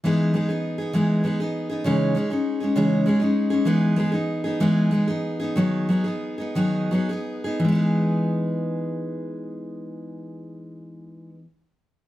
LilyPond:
\new Staff \with { instrumentName = "Steel-string acoustic guitar" } { \time 6/8 \key e \major \tempo 4. = 62 <e gis b dis' gis'>8 <gis b dis' gis'>16 <b dis' gis'>8 <b dis' gis'>16 <e gis b dis' gis'>8 <gis b dis' gis'>16 <b dis' gis'>8 <b dis' gis'>16 | <cis e gis cis' dis' gis'>8 <gis cis' dis' gis'>16 <gis cis' dis' gis'>8 <gis cis' dis' gis'>16 <cis e gis cis' dis' gis'>8 <gis cis' dis' gis'>16 <gis cis' dis' gis'>8 <gis cis' dis' gis'>16 | <e gis b dis' gis'>8 <gis b dis' gis'>16 <b dis' gis'>8 <b dis' gis'>16 <e gis b dis' gis'>8 <gis b dis' gis'>16 <b dis' gis'>8 <b dis' gis'>16 | <dis fis b dis' gis'>8 <fis b dis' gis'>16 <b dis' gis'>8 <b dis' gis'>16 <dis fis b dis' gis'>8 <fis b dis' gis'>16 <b dis' gis'>8 <b dis' gis'>16 |
<e gis b dis' gis'>2.~ | <e gis b dis' gis'>2. | }